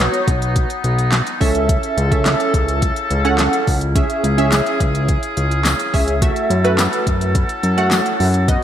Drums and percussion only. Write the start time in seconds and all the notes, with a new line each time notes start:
0.00 closed hi-hat
0.14 closed hi-hat
0.28 kick, closed hi-hat
0.42 closed hi-hat
0.56 kick, closed hi-hat
0.70 closed hi-hat
0.84 closed hi-hat
0.98 closed hi-hat
1.12 snare, clap, closed hi-hat
1.27 closed hi-hat
1.41 kick, open hi-hat
1.55 closed hi-hat
1.69 kick, closed hi-hat
1.83 closed hi-hat
1.98 closed hi-hat
2.12 kick, closed hi-hat
2.26 snare, clap, closed hi-hat
2.40 closed hi-hat
2.54 kick, closed hi-hat
2.68 closed hi-hat
2.82 kick, closed hi-hat
2.96 closed hi-hat
3.10 closed hi-hat
3.25 closed hi-hat
3.38 snare, clap, closed hi-hat
3.53 closed hi-hat
3.67 kick, open hi-hat
3.81 closed hi-hat
3.96 kick, closed hi-hat
4.10 closed hi-hat
4.24 closed hi-hat
4.38 closed hi-hat
4.52 snare, clap, closed hi-hat, tambourine
4.66 closed hi-hat
4.80 kick, closed hi-hat
4.95 closed hi-hat
5.08 kick, closed hi-hat
5.23 closed hi-hat
5.37 closed hi-hat
5.51 closed hi-hat
5.65 snare, clap, closed hi-hat, tambourine
5.79 closed hi-hat
5.94 kick, open hi-hat
6.08 closed hi-hat
6.22 kick, closed hi-hat
6.36 closed hi-hat
6.50 closed hi-hat
6.65 closed hi-hat
6.79 snare, clap, closed hi-hat, tambourine
6.93 closed hi-hat
7.07 kick, closed hi-hat
7.21 closed hi-hat
7.35 kick, closed hi-hat
7.49 closed hi-hat
7.63 closed hi-hat
7.78 closed hi-hat
7.91 snare, clap, closed hi-hat, tambourine
8.06 closed hi-hat
8.20 open hi-hat
8.34 closed hi-hat
8.48 kick, closed hi-hat